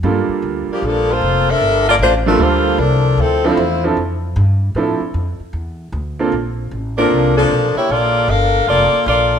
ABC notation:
X:1
M:4/4
L:1/8
Q:"Swing" 1/4=153
K:Dm
V:1 name="Saxophone section"
z3 [F,B,DG] [F,B,DA] [B,FAc]2 [DABe]- | [DABe] [B,FAd] [A,DFc] [F,A,DB] [B,FAc]2 [F,DAB]2 | [F,CEA] [A,EFc]2 z4 z | z8 |
z3 [F,DAB]2 [F,B,DA]2 [B,EG^c] | [B,FAd]2 [DABf]2 [B,FAd]2 [B,FAd]2 |]
V:2 name="Grand piano"
[G,B,DFA]4- [G,B,DFA] z3 | z3 [G,B,DFA]3 z2 | z [F,CDEA] z [F,CDEA] z4 | [F,CDEA] z6 [B,CDFA] |
z3 [B,CDF]3 z2 | z8 |]
V:3 name="Upright bass" clef=bass
G,, z D,, z B,,,2 F,,,2 | G,,,2 A,,,2 D,,2 C,,2 | D,,2 E,,2 F,,2 G,,2 | A,, z F,, z E,,2 D,,2 |
B,,,2 A,,,2 C,,2 =B,,, z | B,,,2 G,,,2 F,,, z B,,,2 |]